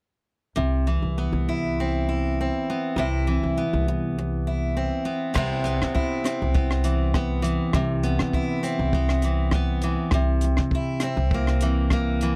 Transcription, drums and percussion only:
0, 0, Header, 1, 2, 480
1, 0, Start_track
1, 0, Key_signature, 0, "major"
1, 0, Tempo, 597015
1, 457, Time_signature, 4, 2, 24, 8
1, 9936, End_track
2, 0, Start_track
2, 0, Title_t, "Drums"
2, 4306, Note_on_c, 9, 37, 71
2, 4306, Note_on_c, 9, 49, 76
2, 4308, Note_on_c, 9, 36, 87
2, 4386, Note_off_c, 9, 37, 0
2, 4386, Note_off_c, 9, 49, 0
2, 4389, Note_off_c, 9, 36, 0
2, 4546, Note_on_c, 9, 42, 48
2, 4627, Note_off_c, 9, 42, 0
2, 4677, Note_on_c, 9, 37, 60
2, 4758, Note_off_c, 9, 37, 0
2, 4788, Note_on_c, 9, 36, 59
2, 4868, Note_off_c, 9, 36, 0
2, 5029, Note_on_c, 9, 37, 60
2, 5029, Note_on_c, 9, 42, 49
2, 5109, Note_off_c, 9, 37, 0
2, 5109, Note_off_c, 9, 42, 0
2, 5267, Note_on_c, 9, 36, 86
2, 5348, Note_off_c, 9, 36, 0
2, 5392, Note_on_c, 9, 37, 64
2, 5473, Note_off_c, 9, 37, 0
2, 5499, Note_on_c, 9, 42, 50
2, 5579, Note_off_c, 9, 42, 0
2, 5742, Note_on_c, 9, 37, 63
2, 5743, Note_on_c, 9, 36, 68
2, 5823, Note_off_c, 9, 37, 0
2, 5824, Note_off_c, 9, 36, 0
2, 5984, Note_on_c, 9, 42, 50
2, 6065, Note_off_c, 9, 42, 0
2, 6217, Note_on_c, 9, 37, 70
2, 6222, Note_on_c, 9, 36, 82
2, 6298, Note_off_c, 9, 37, 0
2, 6302, Note_off_c, 9, 36, 0
2, 6461, Note_on_c, 9, 42, 44
2, 6541, Note_off_c, 9, 42, 0
2, 6587, Note_on_c, 9, 37, 67
2, 6667, Note_off_c, 9, 37, 0
2, 6701, Note_on_c, 9, 36, 58
2, 6781, Note_off_c, 9, 36, 0
2, 6945, Note_on_c, 9, 42, 42
2, 7025, Note_off_c, 9, 42, 0
2, 7180, Note_on_c, 9, 36, 77
2, 7260, Note_off_c, 9, 36, 0
2, 7308, Note_on_c, 9, 37, 67
2, 7389, Note_off_c, 9, 37, 0
2, 7414, Note_on_c, 9, 42, 45
2, 7495, Note_off_c, 9, 42, 0
2, 7649, Note_on_c, 9, 37, 66
2, 7655, Note_on_c, 9, 36, 62
2, 7729, Note_off_c, 9, 37, 0
2, 7736, Note_off_c, 9, 36, 0
2, 7892, Note_on_c, 9, 42, 49
2, 7973, Note_off_c, 9, 42, 0
2, 8129, Note_on_c, 9, 37, 66
2, 8134, Note_on_c, 9, 36, 83
2, 8209, Note_off_c, 9, 37, 0
2, 8214, Note_off_c, 9, 36, 0
2, 8370, Note_on_c, 9, 42, 46
2, 8451, Note_off_c, 9, 42, 0
2, 8497, Note_on_c, 9, 37, 61
2, 8578, Note_off_c, 9, 37, 0
2, 8613, Note_on_c, 9, 36, 65
2, 8693, Note_off_c, 9, 36, 0
2, 8844, Note_on_c, 9, 37, 61
2, 8844, Note_on_c, 9, 42, 45
2, 8924, Note_off_c, 9, 37, 0
2, 8924, Note_off_c, 9, 42, 0
2, 9094, Note_on_c, 9, 36, 84
2, 9174, Note_off_c, 9, 36, 0
2, 9224, Note_on_c, 9, 37, 62
2, 9305, Note_off_c, 9, 37, 0
2, 9332, Note_on_c, 9, 42, 49
2, 9412, Note_off_c, 9, 42, 0
2, 9570, Note_on_c, 9, 37, 65
2, 9574, Note_on_c, 9, 36, 64
2, 9651, Note_off_c, 9, 37, 0
2, 9654, Note_off_c, 9, 36, 0
2, 9816, Note_on_c, 9, 42, 50
2, 9897, Note_off_c, 9, 42, 0
2, 9936, End_track
0, 0, End_of_file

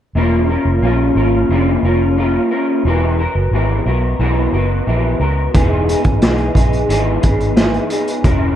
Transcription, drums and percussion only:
0, 0, Header, 1, 2, 480
1, 0, Start_track
1, 0, Tempo, 674233
1, 110, Time_signature, 4, 2, 24, 8
1, 6092, End_track
2, 0, Start_track
2, 0, Title_t, "Drums"
2, 3947, Note_on_c, 9, 42, 80
2, 3948, Note_on_c, 9, 36, 91
2, 4018, Note_off_c, 9, 42, 0
2, 4019, Note_off_c, 9, 36, 0
2, 4192, Note_on_c, 9, 42, 66
2, 4263, Note_off_c, 9, 42, 0
2, 4301, Note_on_c, 9, 42, 44
2, 4307, Note_on_c, 9, 36, 87
2, 4372, Note_off_c, 9, 42, 0
2, 4378, Note_off_c, 9, 36, 0
2, 4426, Note_on_c, 9, 42, 87
2, 4430, Note_on_c, 9, 38, 94
2, 4497, Note_off_c, 9, 42, 0
2, 4501, Note_off_c, 9, 38, 0
2, 4540, Note_on_c, 9, 42, 30
2, 4611, Note_off_c, 9, 42, 0
2, 4664, Note_on_c, 9, 36, 64
2, 4672, Note_on_c, 9, 42, 69
2, 4735, Note_off_c, 9, 36, 0
2, 4743, Note_off_c, 9, 42, 0
2, 4790, Note_on_c, 9, 42, 35
2, 4861, Note_off_c, 9, 42, 0
2, 4912, Note_on_c, 9, 42, 68
2, 4983, Note_off_c, 9, 42, 0
2, 5146, Note_on_c, 9, 42, 74
2, 5152, Note_on_c, 9, 36, 82
2, 5217, Note_off_c, 9, 42, 0
2, 5223, Note_off_c, 9, 36, 0
2, 5270, Note_on_c, 9, 42, 40
2, 5341, Note_off_c, 9, 42, 0
2, 5387, Note_on_c, 9, 38, 85
2, 5387, Note_on_c, 9, 42, 74
2, 5458, Note_off_c, 9, 38, 0
2, 5459, Note_off_c, 9, 42, 0
2, 5510, Note_on_c, 9, 42, 27
2, 5581, Note_off_c, 9, 42, 0
2, 5623, Note_on_c, 9, 42, 78
2, 5695, Note_off_c, 9, 42, 0
2, 5748, Note_on_c, 9, 42, 48
2, 5819, Note_off_c, 9, 42, 0
2, 5868, Note_on_c, 9, 42, 73
2, 5869, Note_on_c, 9, 36, 89
2, 5940, Note_off_c, 9, 36, 0
2, 5940, Note_off_c, 9, 42, 0
2, 6092, End_track
0, 0, End_of_file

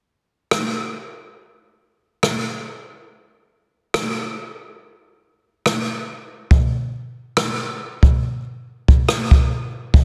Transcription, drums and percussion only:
0, 0, Header, 1, 2, 480
1, 0, Start_track
1, 0, Tempo, 857143
1, 1726, Time_signature, 4, 2, 24, 8
1, 5624, End_track
2, 0, Start_track
2, 0, Title_t, "Drums"
2, 288, Note_on_c, 9, 37, 101
2, 344, Note_off_c, 9, 37, 0
2, 1248, Note_on_c, 9, 37, 92
2, 1304, Note_off_c, 9, 37, 0
2, 2207, Note_on_c, 9, 37, 107
2, 2263, Note_off_c, 9, 37, 0
2, 3168, Note_on_c, 9, 37, 96
2, 3224, Note_off_c, 9, 37, 0
2, 3645, Note_on_c, 9, 36, 95
2, 3701, Note_off_c, 9, 36, 0
2, 4126, Note_on_c, 9, 37, 113
2, 4182, Note_off_c, 9, 37, 0
2, 4495, Note_on_c, 9, 36, 83
2, 4551, Note_off_c, 9, 36, 0
2, 4975, Note_on_c, 9, 36, 79
2, 5031, Note_off_c, 9, 36, 0
2, 5088, Note_on_c, 9, 37, 89
2, 5144, Note_off_c, 9, 37, 0
2, 5215, Note_on_c, 9, 36, 84
2, 5271, Note_off_c, 9, 36, 0
2, 5566, Note_on_c, 9, 36, 97
2, 5622, Note_off_c, 9, 36, 0
2, 5624, End_track
0, 0, End_of_file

